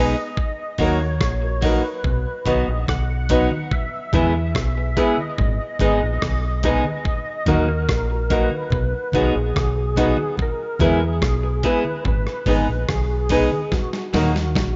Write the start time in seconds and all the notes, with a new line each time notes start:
Already playing: B1 G#3 B3 D#4 G#4 B4
0.00 D#5
0.17 muted clean electric guitar stroke
0.37 kick
0.78 D#2 F#3 A#3 D#4 F#4 A#4 C#5, kick, open hi-hat
1.00 muted clean electric guitar stroke
1.21 A#1, kick, cross-stick
1.42 F#4 A#4, muted clean electric guitar stroke
1.61 F#3 A#3 D#4 F#4 A#4 B4, kick, open hi-hat
2.04 B1, kick, low conga
2.45 B1 F#3 B3 D#4 F#4 B4 D#5, kick, closed hi-hat, high conga
2.68 A#1
2.87 B1 F#5, kick, cross-stick, high conga
3.29 F#3 B3 D#4 F#4 B4, kick, closed hi-hat, low conga
3.51 muted clean electric guitar stroke, high conga
3.71 E5, kick, low conga
4.13 E2 G#3 B3 E4 G#4 B4 E5, kick, closed hi-hat, high conga, low conga
4.35 muted clean electric guitar stroke
4.55 B1, kick, cross-stick
4.77 G#4 B4, muted clean electric guitar stroke
4.96 G#3 B3 E4 G#4 B4, kick, closed hi-hat
5.18 D#5, high conga
5.38 G#1, kick, low conga
5.79 G#1 G#3 B3 D#4 G#4 B4, kick, closed hi-hat, high conga
6.03 A#1
6.22 B1, kick, cross-stick, high conga
6.63 G#3 B3 D#4 G#4 B4, kick, closed hi-hat, low conga
6.84 muted clean electric guitar stroke, high conga
7.05 kick, low conga
7.46 D#2 F#3 A#3 D#4 F#4 A#4, kick, closed hi-hat, high conga, low conga
7.69 muted clean electric guitar stroke
7.89 A#1, kick, cross-stick
8.10 F#4 A#4, muted clean electric guitar stroke
8.30 F#3 A#3 D#4 F#4 A#4 B4, kick, closed hi-hat
8.51 high conga
8.70 B1, kick, low conga
9.12 B1 F#3 B3 D#4 F#4 B4, kick, closed hi-hat, high conga
9.16 G#4
9.36 A#1
9.54 B1, kick, cross-stick, high conga
9.96 F#3 B3 D#4 F#4 B4, kick, closed hi-hat, low conga
10.17 muted clean electric guitar stroke, high conga
10.37 kick, low conga
10.42 A#4
10.79 E2 G#3 B3 E4 G#4 B4, kick, closed hi-hat, high conga, low conga
11.04 G#4
11.22 B1, kick, cross-stick
11.43 G#4 B4, muted clean electric guitar stroke
11.63 G#3 B3 E4 G#4 B4, kick, closed hi-hat
11.85 high conga
12.05 G#1 B4, kick, low conga
12.27 cross-stick
12.46 G#1 G#3 B3 D#4 G#4 B4, kick, open hi-hat, high conga, low conga
12.69 A#1
12.88 B1 G#4, kick, cross-stick, high conga
13.29 G#3 B3 D#4 G#4 B4, kick, open hi-hat, low conga
13.52 muted clean electric guitar stroke, high conga
13.72 F#4, kick, snare, low conga
13.93 snare
14.13 D#2 F#3 A#3 D#4 F#4 A#4, snare, open hi-hat, high conga, low conga
14.36 snare
14.55 A#1, kick, snare, high conga